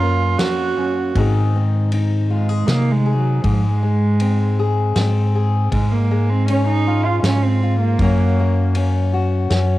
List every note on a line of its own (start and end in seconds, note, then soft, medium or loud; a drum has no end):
0.00 0.35 F#2 medium
0.00 0.38 F#2 medium
0.00 1.11 A#3 medium
0.00 1.23 A#3 medium
0.00 0.76 C#4 medium
0.00 1.11 C#4 medium
0.00 0.40 F4 medium
0.00 0.35 A#5 medium
0.38 0.76 F2 medium
0.38 1.15 F#4 loud
0.38 1.23 F#4 medium
0.38 snare medium
0.38 ride medium
0.77 1.15 F#2 medium
0.77 1.24 C#4 medium
1.15 2.64 G#2 medium
1.15 3.43 G#2 medium
1.15 3.44 D#3 medium
1.15 1.55 C4 soft
1.15 1.92 D#4 soft
1.15 2.30 G#4 medium
1.15 kick medium
1.15 ride soft
1.55 3.40 C4 soft
1.92 2.67 D#4 medium
1.92 ride soft
2.30 2.68 G#3 medium
2.30 2.49 F4 medium
2.49 3.05 G#4 soft
2.67 3.40 C3 medium
2.67 2.93 A#3 medium
2.67 3.39 D#4 medium
2.67 snare medium
2.67 ride soft
2.91 3.16 G#3 medium
3.06 4.59 G#4 medium
3.17 3.43 F#3 medium
3.41 5.67 G#2 medium
3.41 4.92 G#2 medium
3.41 3.67 F3 medium
3.41 kick medium
3.41 ride soft
3.67 4.78 G#3 medium
3.83 6.10 G#3 soft
4.20 4.95 C4 medium
4.20 ride soft
4.59 5.34 G#4 medium
4.96 5.68 G#2 medium
4.96 5.72 C4 medium
4.96 snare medium
4.96 ride soft
5.35 5.68 G#4 medium
5.72 7.20 G#2 medium
5.72 7.95 G#2 medium
5.72 5.93 G#3 medium
5.72 kick medium
5.72 ride soft
5.92 6.31 A#3 medium
6.11 8.00 G#3 soft
6.30 6.48 C4 medium
6.48 6.66 C#4 medium
6.48 7.25 C#4 medium
6.48 ride soft
6.68 7.06 D#4 medium
6.87 7.62 F4 medium
7.05 7.22 F4 medium
7.23 7.95 G#2 medium
7.23 7.44 C#4 medium
7.23 snare medium
7.23 ride medium
7.43 7.80 C4 medium
7.63 8.00 F4 medium
7.80 8.90 A#3 medium
7.99 9.46 F#2 medium
7.99 9.79 F#2 medium
7.99 9.79 F#3 medium
7.99 8.38 A#3 medium
7.99 kick medium
7.99 ride soft
8.03 8.75 C#4 medium
8.03 9.12 F#4 medium
8.39 9.79 A#3 medium
8.75 9.50 C#4 medium
8.75 ride soft
9.13 9.79 F#4 medium
9.50 9.79 F#2 medium
9.50 9.79 C#4 soft
9.50 snare medium
9.50 ride soft